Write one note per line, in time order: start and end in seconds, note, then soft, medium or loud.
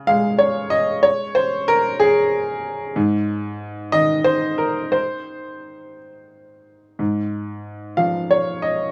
0.00 1.00 C#3 medium
0.07 2.96 G#3 medium
0.07 0.40 F5 loud
0.39 0.71 C#5 medium
0.70 1.03 D#5 medium
1.03 1.35 C#5 medium
1.35 1.67 C5 medium
1.68 2.00 A#4 loud
2.00 2.95 G#4 medium
2.96 4.90 G#2 medium
3.92 7.00 D#3 medium
3.92 4.26 D#5 loud
4.24 4.59 C5 medium
4.58 4.93 A#4 medium
4.92 5.96 C5 medium
6.99 8.91 G#2 medium
7.97 8.92 F3 soft
7.97 8.30 F5 medium
8.31 8.63 C#5 medium
8.62 8.92 D#5 medium